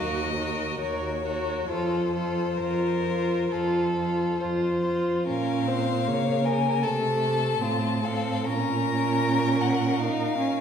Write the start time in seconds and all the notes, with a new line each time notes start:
Already playing: D#2 A#4 D#5
0.00 F#4
0.38 F#4 A#4
0.80 D#2 F#4 A#4 C#5
1.24 F#4 A#4
1.69 F2 F4 A4 C5
2.15 F4 A4
2.60 F2 F4 A#4
3.07 F4
3.51 F2 F4 A4
3.96 F4
4.40 F2 F4 C5
4.85 F4
5.27 A#2 C#4 A#4 F5
5.67 C4 C5
6.07 C#3 A#3 C#5
6.45 A#4 G#5
6.83 C3 A3 A4 A5
7.61 A2 C4 F4
8.03 C4 A4 F5
8.46 A#2 C#4 A#4 A#5
9.61 F#5
10.00 D#4 F5
10.38 C#4